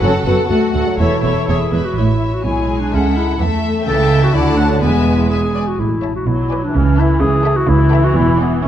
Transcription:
0.00 F#1 F#2 C#4 F#4 A4 F#5
0.25 F#1 F#2 B3 F#4 A4 F#5
0.49 D2 A3 F#4 A4 F#5
0.74 D2 F#4 A4 F#5
0.87 F#3
0.98 E1 E2 E3 E4 A4 C#5 E5
1.23 E1 E2 A4 C#5 E5
1.48 E1 E2 G#4 C#5 E5
1.72 E1 E2 B4 E5
1.85 F#4
1.97 A1 A2 E4 C#5 E5
2.33 F#4
2.44 B1 B2 G#3 E4 G#4 G#5
2.80 D4
2.92 C#2 C#3 C#4 A4 E5 F#5
3.17 E4
3.39 E2 E3 A3 A4 E5
3.86 C#2 C#3 E3 A4 E5 G5 A5
4.23 F#4
4.34 D2 D3 A3 E4 D5 F#5 A5
4.57 D4 C#5
4.80 E1 E2 G#3 B3 B4 E5 G#5
5.29 G#4 E5 G#5
5.56 D5
5.68 F#4
5.80 A1 A2 E4
6.03 C#5 E5 A5
6.15 F#4
6.27 B1 B2 F#3 E4
6.50 B4 D5 G#5
6.64 D4
6.74 C#2 C#3 E3 C#4
6.97 E4 A4 E5 A5
7.20 C#2 C#3 G#4
7.44 A4 E5 A5
7.56 F#4
7.68 C#2 C#3 E3 E4
7.92 A4 E5 G5
8.04 F#4
8.15 E1 E2 E4
8.39 B3 G#4 D5 F#5
8.63 A1 A2 A3 C#4

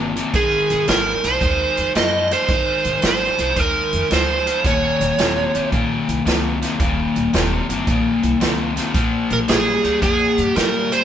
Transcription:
Already playing: G1 D#2 C3
0.16 D#2 C3, closed hi-hat
0.34 G#1 G#2 D#3 G#4, kick, closed hi-hat
0.70 G#1, closed hi-hat
0.88 G#1 G#2 F3 A#4, snare, closed hi-hat
1.24 C2 G#2 F3 C5, closed hi-hat
1.41 D#2 G#2 D#3, kick, closed hi-hat
1.77 F2, closed hi-hat
1.95 F#2 G#2 F3 D#5, snare, closed hi-hat
2.31 G#2 F3 C5, closed hi-hat
2.49 G#1 G#2 D#3, kick, closed hi-hat
2.85 G#1, closed hi-hat
3.02 G#1 G#2 F3, snare, closed hi-hat
3.06 C5
3.38 C2 G#2 F3, closed hi-hat
3.56 D#2 G#2 D#3 A#4, kick, closed hi-hat
3.93 F2, closed hi-hat
4.10 D2 G#2 F3 C5, snare, closed hi-hat
4.46 G#2 F3, closed hi-hat
4.64 D#1 D#2 A#2 C#5, kick, closed hi-hat
5.00 D#1, closed hi-hat
5.18 D#1 D#2 C3, snare, closed hi-hat
5.54 G1 D#2 C3, closed hi-hat
5.72 A#1 D#2 A#2, kick, closed hi-hat
6.08 C2, closed hi-hat
6.25 C#2 D#2 C3, snare, closed hi-hat
6.62 D#2 C3, snare, closed hi-hat
6.80 D#1 D#2 A#2, kick, closed hi-hat
7.16 D#1, closed hi-hat
7.33 D#1 D#2 C3, snare, closed hi-hat
7.69 G1 D#2 C3, closed hi-hat
7.87 A#1 D#2 A#2, kick, closed hi-hat
8.23 C2, closed hi-hat
8.40 C#2 D#2 C3, snare, closed hi-hat
8.76 D#2 C3, snare, closed hi-hat
8.93 A#1 A#2 F3, kick, closed hi-hat
9.30 A#1 A#4, closed hi-hat
9.48 A#1 A#2 G3 G#4, snare, closed hi-hat
9.83 D2 A#2 G3, closed hi-hat
10.02 F2 A#2 F3 G#4, kick, closed hi-hat
10.38 G2, closed hi-hat
10.43 G4
10.56 G#2 A#2 G3 A#4, snare, closed hi-hat
10.92 A#2 G3 C5, closed hi-hat

